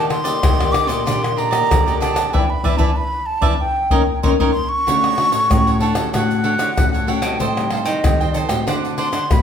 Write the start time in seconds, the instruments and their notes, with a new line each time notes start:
Already playing: nylon-string guitar D#3 A#3 D4 G4
0.09 flute C6, muted cavaquinho stroke, pandeiro, tamborim
0.24 nylon-string guitar A#3 D4 G4, cavaquinho G4 D5 D#5, pandeiro, shaker
0.43 nylon-string guitar A#2 D#3, pandeiro, tamborim, shaker, surdo
0.59 nylon-string guitar A#3 D4 G4, cavaquinho G4 D5 D#5, pandeiro, tamborim, shaker
0.72 cavaquinho D4 G4 D5 D#5, flute D6, pandeiro, tamborim, shaker
0.87 nylon-string guitar A#2 A#3 D4 G4, cavaquinho G4 D5 D#5, flute C6, pandeiro, shaker
1.06 nylon-string guitar A#2 D#3 A#3 D4 G4, cavaquinho D4 G4 D5 D#5, pandeiro, tamborim, shaker, surdo
1.22 muted cavaquinho stroke, pandeiro, tamborim, shaker
1.36 cavaquinho D4 G4 D5 D#5, flute A#5, pandeiro
1.51 nylon-string guitar A#3 D4 G4, cavaquinho G4 D5 D#5, pandeiro, tamborim, shaker
1.70 nylon-string guitar A#2 D3, pandeiro, tamborim, shaker, surdo
1.86 nylon-string guitar A#3 D4 G4, cavaquinho G4 D5 D#5, pandeiro, shaker
2.00 cavaquinho D4 G4 D5 D#5, flute A5, pandeiro, tamborim, shaker
2.15 cavaquinho G4 D5 D#5, pandeiro, tamborim, shaker
2.33 nylon-string guitar E3 B3 D4 E4, cavaquinho B4 D5 E5, flute G5, surdo
2.50 flute B5
2.63 nylon-string guitar E3 B3 D4 E4, cavaquinho B4 D5 E5, surdo
2.78 nylon-string guitar E3 B3 D4 E4, cavaquinho B4 D5 E5, flute A5, surdo
2.97 flute B5
3.26 flute A5
3.41 nylon-string guitar E3 B3 D4 E4, cavaquinho B4 D5 E5, surdo
3.60 flute G5
3.90 nylon-string guitar D#3 A#3 C#4 D#4, cavaquinho A#4 C#5 D#5, surdo
4.23 nylon-string guitar D#3 A#3 C#4 D#4, cavaquinho A#4 C#5 D#5, flute C6, surdo
4.39 nylon-string guitar D#3 A#3 C#4 D#4, cavaquinho A#4 C#5 D#5, surdo
4.52 flute C6
4.69 flute C#6
4.87 nylon-string guitar D3 A3 C#4 F#4, cavaquinho D4 A4 C#5 F#5, pandeiro, shaker, surdo
5.04 pandeiro, tamborim, shaker
5.17 nylon-string guitar A3 F#4, cavaquinho D4 A4 C#5 F#5, pandeiro, tamborim
5.32 nylon-string guitar A2, cavaquinho A4 C#5 F#5, pandeiro, shaker
5.50 nylon-string guitar A2 A3 C#4 F#4, pandeiro, tamborim, shaker, surdo
5.67 cavaquinho A4 C#5 F#5, pandeiro, shaker
5.80 cavaquinho D4 A4 C#5 F#5, flute A5, pandeiro
5.95 nylon-string guitar D3 A3 C#4 F#4, cavaquinho A4 C#5 F#5, pandeiro, tamborim, shaker
6.13 nylon-string guitar A2 D3 A3 C#4 F#4, cavaquinho D4 A4 C#5 F#5, flute F#5, pandeiro, tamborim, shaker, surdo
6.31 pandeiro, shaker
6.44 cavaquinho D4 A4 C#5 F#5, pandeiro
6.58 nylon-string guitar D3, cavaquinho D4 A4 C#5 F#5, pandeiro, tamborim, shaker
6.76 nylon-string guitar A2 A3 C#4 F#4, pandeiro, tamborim, shaker, surdo
6.93 cavaquinho A4 C#5 F#5, pandeiro, shaker
7.07 nylon-string guitar A3 C#4 F#4, cavaquinho D4 A4 C#5 F#5, flute G5, pandeiro
7.21 nylon-string guitar B2 G3 C4 D#4, cavaquinho A4 C#5 F#5, pandeiro, tamborim, shaker
7.40 nylon-string guitar A2, cavaquinho A4 C5 D#5 G5, pandeiro, shaker, surdo
7.56 nylon-string guitar G3 C4 D#4, pandeiro, tamborim, shaker
7.70 nylon-string guitar G3 C4 D#4, cavaquinho A4 C5 D#5 G5, flute F5, pandeiro, tamborim
7.85 nylon-string guitar D#3, cavaquinho C5 D#5 G5, flute D#5, pandeiro, shaker
8.04 nylon-string guitar A2 D#3 G3 C4 D#4, pandeiro, tamborim, shaker, surdo
8.20 cavaquinho C5 D#5 G5, pandeiro, shaker
8.34 cavaquinho A4 C5 D#5 G5, pandeiro, shaker
8.49 nylon-string guitar A2 A3 C4 F#4, cavaquinho C5 D#5 G5, pandeiro, tamborim, shaker
8.67 nylon-string guitar D3, cavaquinho D4 C5 D5 F#5, pandeiro, tamborim, shaker, surdo
8.85 pandeiro, shaker
8.98 cavaquinho D4 C5 D5 F#5, flute C6, pandeiro
9.12 nylon-string guitar D3, cavaquinho D4 C5 D5 F#5, pandeiro, tamborim, shaker
9.30 nylon-string guitar A2 A3 C4 F#4, flute B5, pandeiro, tamborim, shaker, surdo